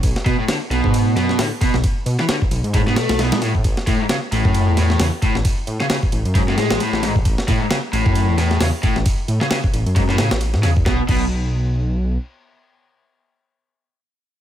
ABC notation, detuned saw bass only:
X:1
M:4/4
L:1/16
Q:"Swing 16ths" 1/4=133
K:A
V:1 name="Detuned saw bass" clef=bass
B,,, z B,, z3 B,,, G,,2 A,, F,,2 A,, z2 B,,, | z2 B,, z3 B,,, G,,3 B,, B,,,2 B,, A,, A,, | A,,, z A,, z3 A,,, F,,2 E,, E,,2 E,, z2 A,,, | z2 A,, z3 A,,, F,,3 A,, A,,, z A,,,3 |
A,,, z A,, z3 A,,, F,,2 E,, E,,2 E,, z2 A,,, | z2 A,, z3 A,,, F,,3 A,, A,,,2 A,, E,, E,, | B,,, z B,,,8- B,,,2 z4 | z16 |]